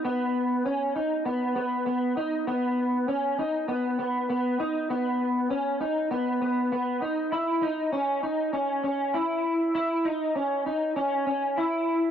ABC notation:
X:1
M:4/4
L:1/8
Q:1/4=99
K:C#dor
V:1 name="Clean electric guitar"
B,2 C D B, B, B, D | B,2 C D B, B, B, D | B,2 C D B, B, B, D | E D C D C C E2 |
E D C D C C E2 |]